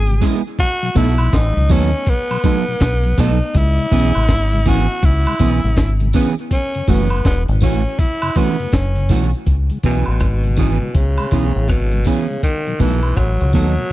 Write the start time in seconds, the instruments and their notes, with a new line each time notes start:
Already playing: fingered electric bass G#1, tenor saxophone G#4
0.07 tonewheel organ C#3 G#3, closed hi-hat
0.21 clean electric guitar G#3 B3 E4 G#4, tonewheel organ B3 C#4 E4, kick, open hi-hat, tambourine
0.47 closed hi-hat
0.59 tenor saxophone F#4, kick, closed hi-hat
0.83 tonewheel organ B2 F#3, closed hi-hat
0.95 fingered electric bass B1, clean electric guitar F#3 B3 D#4 A4, tonewheel organ A3 B3 D#4, tenor saxophone E4, kick, closed hi-hat, tambourine
1.18 tonewheel organ B2 F#3, high woodblock
1.33 fingered electric bass A1, tenor saxophone D#4, kick, snare, closed hi-hat
1.57 fingered electric bass C#2, tonewheel organ B2 F#3, closed hi-hat
1.69 fingered electric bass D#2, clean electric guitar F#3 B3 D#4 A4, tonewheel organ A3 B3 D#4, tenor saxophone C#4, kick, closed hi-hat, tambourine
2.07 tenor saxophone B3, kick, closed hi-hat
2.31 tonewheel organ B2 F#3, closed hi-hat, high woodblock
2.43 clean electric guitar F#3 B3 D#4 A4, tonewheel organ A3 B3 D#4, kick, closed hi-hat, tambourine
2.68 tonewheel organ B2 F#3
2.80 fingered electric bass B1, kick, snare, closed hi-hat
3.04 tonewheel organ B2 F#3, closed hi-hat
3.18 fingered electric bass B1, clean electric guitar F#3 B3 D#4 A4, tonewheel organ A3 B3 D#4, tenor saxophone D#4, kick, open hi-hat, tambourine
3.43 closed hi-hat
3.54 fingered electric bass C#2, tenor saxophone E4, kick, closed hi-hat
3.78 tonewheel organ C#3 G#3, closed hi-hat
3.91 fingered electric bass B1, clean electric guitar E3 B3 C#4 G#4, tonewheel organ B3 C#4 E4, kick, closed hi-hat, tambourine
4.15 fingered electric bass A1, tonewheel organ C#3 G#3, high woodblock
4.28 fingered electric bass G#1, kick, snare, closed hi-hat
4.52 tonewheel organ C#3 G#3, closed hi-hat
4.66 clean electric guitar E3 B3 C#4 G#4, tonewheel organ B3 C#4 E4, tenor saxophone F#4, kick, closed hi-hat, tambourine
5.03 fingered electric bass C#2, tenor saxophone E4, kick, closed hi-hat
5.26 tonewheel organ C#3 G#3, closed hi-hat, high woodblock
5.39 fingered electric bass B1, clean electric guitar E3 B3 C#4 G#4, tonewheel organ B3 C#4 E4, kick, closed hi-hat, tambourine
5.64 fingered electric bass A1, tonewheel organ C#3 G#3
5.76 fingered electric bass G#1, kick, snare, closed hi-hat
6.00 tonewheel organ C#3 G#3, closed hi-hat
6.13 clean electric guitar E3 B3 C#4 G#4, tonewheel organ B3 C#4 E4, tenor saxophone B3, kick, open hi-hat, tambourine
6.39 closed hi-hat
6.51 tenor saxophone C#4, kick, closed hi-hat
6.74 tonewheel organ F#2 C#3, closed hi-hat
6.88 fingered electric bass F#1, clean electric guitar E3 A3 C#4 F#4, tonewheel organ A3 E4 F#4, tenor saxophone B3, kick, closed hi-hat, tambourine
7.10 tonewheel organ F#2 C#3, closed hi-hat, high woodblock
7.25 fingered electric bass E1, tenor saxophone B3, kick, snare, closed hi-hat
7.48 fingered electric bass G#1, tonewheel organ F#2 C#3, closed hi-hat
7.61 fingered electric bass A1, clean electric guitar E3 A3 C#4 F#4, tonewheel organ A3 E4 F#4, tenor saxophone C#4, kick, closed hi-hat, tambourine
7.99 tenor saxophone E4, kick, closed hi-hat
8.22 tonewheel organ F#2 C#3, closed hi-hat, high woodblock
8.35 clean electric guitar E3 A3 C#4 F#4, tonewheel organ A3 E4 F#4, tenor saxophone B3, kick, closed hi-hat, tambourine
8.59 tonewheel organ F#2 C#3, closed hi-hat
8.72 fingered electric bass F#1, tenor saxophone C#4, kick, snare, closed hi-hat
8.96 tonewheel organ F#2 C#3, closed hi-hat
9.09 fingered electric bass B1, clean electric guitar E3 A3 C#4 F#4, tonewheel organ A3 E4 F#4, kick, open hi-hat, tambourine
9.34 closed hi-hat
9.46 fingered electric bass C#2, kick, closed hi-hat
9.70 tonewheel organ C#3 G#3, closed hi-hat
9.83 fingered electric bass B1, tenor saxophone B2, clean electric guitar E3 B3 C#4 G#4, tonewheel organ B3 C#4 E4, kick, closed hi-hat, tambourine
10.06 fingered electric bass A1, high woodblock
10.20 fingered electric bass G#1, kick, cross-stick, closed hi-hat
10.44 tonewheel organ C#3 G#3, closed hi-hat
10.56 tenor saxophone B2, clean electric guitar E3 B3 C#4 G#4, tonewheel organ B3 C#4 E4, kick, closed hi-hat, tambourine
10.82 tonewheel organ C#3 G#3, muted clean electric guitar stroke
10.94 fingered electric bass C#2, tenor saxophone C#3, kick, closed hi-hat
11.18 tonewheel organ C#3 G#3, closed hi-hat, high woodblock
11.31 fingered electric bass B1, clean electric guitar E3 B3 C#4 G#4, tonewheel organ B3 C#4 E4, kick, closed hi-hat, tambourine
11.56 fingered electric bass A1, muted clean electric guitar stroke
11.68 fingered electric bass G#1, tenor saxophone B2, kick, cross-stick, closed hi-hat
11.92 tonewheel organ C#3 G#3, closed hi-hat
12.04 tenor saxophone C#3, clean electric guitar E3 B3 C#4 G#4, tonewheel organ B3 C#4 E4, kick, open hi-hat, tambourine
12.30 tonewheel organ C#3 G#3, closed hi-hat
12.43 tenor saxophone D#3, kick, closed hi-hat
12.67 tonewheel organ B2 F#3, closed hi-hat
12.79 fingered electric bass B1, tenor saxophone E3, clean electric guitar F#3 B3 D#4 A4, tonewheel organ A3 B3 D#4, kick, closed hi-hat, tambourine
13.03 high woodblock
13.16 fingered electric bass A1, tenor saxophone F#3, kick, cross-stick, closed hi-hat
13.40 fingered electric bass C#2, tonewheel organ B2 F#3, closed hi-hat
13.53 fingered electric bass D#2, clean electric guitar F#3 B3 D#4 A4, tenor saxophone F#3, tonewheel organ A3 B3 D#4, kick, closed hi-hat, tambourine
13.77 tonewheel organ B2 F#3, muted clean electric guitar stroke